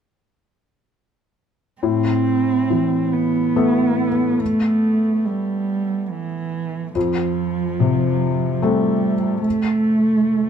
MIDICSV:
0, 0, Header, 1, 3, 480
1, 0, Start_track
1, 0, Key_signature, 0, "minor"
1, 0, Tempo, 877193
1, 998, Time_signature, 3, 2, 24, 8
1, 1475, Tempo, 853485
1, 2915, Tempo, 846262
1, 4355, Tempo, 828729
1, 5920, End_track
2, 0, Start_track
2, 0, Title_t, "Felt piano"
2, 0, Program_c, 0, 0
2, 1000, Note_on_c, 0, 45, 36
2, 1102, Control_c, 0, 64, 127
2, 1479, Note_on_c, 0, 52, 28
2, 1962, Note_on_c, 0, 57, 29
2, 1963, Note_on_c, 0, 59, 27
2, 1965, Note_on_c, 0, 69, 30
2, 2246, Note_off_c, 0, 52, 0
2, 2414, Note_off_c, 0, 45, 0
2, 2447, Control_c, 0, 64, 0
2, 2533, Control_c, 0, 64, 127
2, 3858, Note_off_c, 0, 57, 0
2, 3858, Note_off_c, 0, 59, 0
2, 3860, Note_off_c, 0, 69, 0
2, 3878, Note_on_c, 0, 41, 40
2, 3887, Control_c, 0, 64, 0
2, 3965, Control_c, 0, 64, 127
2, 4358, Note_on_c, 0, 48, 33
2, 4834, Note_on_c, 0, 57, 31
2, 4838, Note_on_c, 0, 60, 31
2, 4840, Note_on_c, 0, 69, 36
2, 5123, Note_off_c, 0, 48, 0
2, 5290, Note_off_c, 0, 41, 0
2, 5324, Control_c, 0, 64, 0
2, 5400, Control_c, 0, 64, 127
2, 5920, Note_off_c, 0, 57, 0
2, 5920, Note_off_c, 0, 60, 0
2, 5920, Note_off_c, 0, 69, 0
2, 5920, End_track
3, 0, Start_track
3, 0, Title_t, "Cello"
3, 0, Program_c, 1, 42
3, 994, Note_on_c, 1, 60, 63
3, 1716, Note_on_c, 1, 59, 57
3, 1725, Note_off_c, 1, 60, 0
3, 2437, Note_on_c, 1, 57, 55
3, 2446, Note_off_c, 1, 59, 0
3, 2915, Note_on_c, 1, 55, 53
3, 2923, Note_off_c, 1, 57, 0
3, 3396, Note_on_c, 1, 52, 53
3, 3405, Note_off_c, 1, 55, 0
3, 3872, Note_off_c, 1, 52, 0
3, 3876, Note_on_c, 1, 53, 65
3, 4837, Note_on_c, 1, 55, 56
3, 4846, Note_off_c, 1, 53, 0
3, 5308, Note_off_c, 1, 55, 0
3, 5311, Note_on_c, 1, 57, 64
3, 5920, Note_off_c, 1, 57, 0
3, 5920, End_track
0, 0, End_of_file